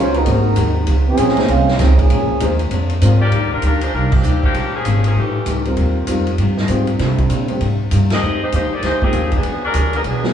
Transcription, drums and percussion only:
0.14 ride
0.26 kick, ride
0.56 kick, hi-hat pedal, ride
0.87 kick, ride
1.17 kick, hi-hat pedal, ride
1.29 snare
1.37 snare, ride
1.48 kick, ride
1.68 snare
1.79 kick, snare, hi-hat pedal, ride
1.99 kick, ride
2.10 kick, ride
2.40 kick, hi-hat pedal, ride
2.59 ride
2.71 kick, ride
2.90 ride
3.02 kick, hi-hat pedal, ride
3.32 kick, ride
3.62 kick, hi-hat pedal, ride
3.81 ride
3.93 kick
4.12 kick, crash
4.23 hi-hat pedal
4.43 kick
4.54 kick, ride
4.85 kick, hi-hat pedal, ride
5.04 ride
5.16 kick
5.46 kick, hi-hat pedal, ride
5.65 ride
5.77 kick, ride
6.07 kick, hi-hat pedal, ride
6.27 ride
6.38 kick, ride
6.57 snare
6.68 kick, hi-hat pedal, ride
6.87 ride
6.99 kick, snare, ride
7.18 kick, ride
7.30 kick, hi-hat pedal, ride
7.48 ride
7.61 kick, ride
7.91 kick, hi-hat pedal, ride
8.10 snare, ride
8.52 kick, hi-hat pedal, ride
8.83 kick, snare, ride
9.02 kick
9.13 kick, hi-hat pedal, ride
9.32 kick, ride
9.43 kick, ride
9.74 kick, hi-hat pedal, ride
9.93 ride
10.04 kick, ride
10.23 snare

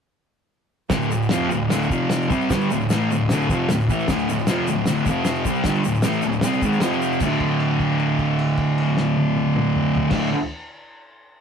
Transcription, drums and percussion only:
0.90 kick, snare, crash, shaker
1.02 shaker
1.11 shaker
1.22 shaker
1.29 snare, crash, shaker
1.51 shaker
1.70 snare, crash, shaker
1.82 shaker
1.90 kick, shaker
2.10 snare, crash, shaker
2.22 shaker
2.30 kick, shaker
2.41 shaker
2.50 kick, snare, crash, shaker
2.61 shaker
2.71 shaker
2.80 shaker
2.90 snare, crash, shaker
3.11 shaker
3.29 snare, crash, shaker
3.41 shaker
3.49 kick, shaker
3.69 snare, crash, shaker
3.80 shaker
3.89 kick, shaker
4.00 shaker
4.08 kick, snare, crash, shaker
4.19 shaker
4.29 shaker
4.39 shaker
4.47 snare, crash, shaker
4.67 shaker
4.86 snare, crash, shaker
5.06 kick, shaker
5.25 snare, crash, shaker
5.45 kick, shaker
5.55 shaker
5.64 kick, snare, crash, shaker
5.75 shaker
5.84 shaker
5.95 shaker
6.02 snare, crash, shaker
6.13 shaker
6.22 shaker
6.33 shaker
6.41 snare, crash, shaker
6.62 kick, shaker
6.73 shaker
6.80 snare, crash, shaker
6.92 shaker
7.02 shaker
7.12 shaker
7.20 kick, crash, shaker
7.40 kick, crash
7.60 crash
7.80 kick, crash
7.99 crash
8.19 kick, crash
8.39 crash
8.58 kick, crash
8.78 crash
8.97 snare
9.16 high tom
9.37 high tom
9.56 mid tom
9.76 mid tom
9.95 floor tom
10.11 kick, snare, crash

